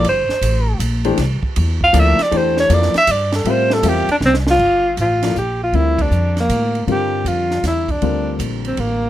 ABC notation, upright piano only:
X:1
M:3/4
L:1/8
Q:"Swing" 1/4=158
K:Gdor
V:1 name="Upright piano"
z4 z [E,A,DGc] | z4 [F,B,EAd] z | [E,A,DGc]2 [F,B,EAd] z3 | [G,CFBe]2 [G,CFBe] z3 |
z3 [F,B,EAd] z2 | [D,G,CFB]4- [D,G,CFB] z | [D,G,CFB]4- [D,G,CFB] z | [D,G,CFB]4- [D,G,CFB] z |]